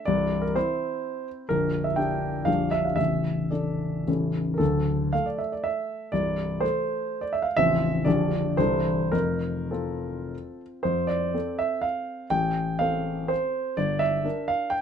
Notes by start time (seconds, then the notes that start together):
0.05 C1 C2 D5
0.42 A#4
0.55 C4 E4 C5
1.49 A#0 A#1 A#4
1.84 E5
1.96 D4 G4 G5
2.45 A#0 A#1 G3 D4 G4 F5
2.71 E5
2.85 F5
2.96 A0 A1 E5
3.51 D4 A4 D5
4.07 A0 A1 E3 C#4 A4
4.54 A4 A#4
4.59 D1 D2
5.13 A3 A4 F5
5.26 D5
5.38 E5
5.52 D5
5.64 E5
6.12 C1 C2 D5
6.60 A3 A4 C5
7.21 D5
7.33 E5
7.42 F5
7.57 A0 A1 F3 C4 F4 E5
8.05 A#0 A#1 F3 D4 G4 D5
8.57 C1 C2 E3 D4 A4 C5
9.12 F1 F2 A#4
9.71 C4 F4 A4
10.83 F2 C5
11.07 D5
11.34 C4 A4
11.59 E5
11.81 F5
12.30 A1 G5
12.79 C4 A4 F5
13.28 C5
13.77 G1 D5
13.99 E5
14.24 D4 A#4
14.48 F5
14.70 G5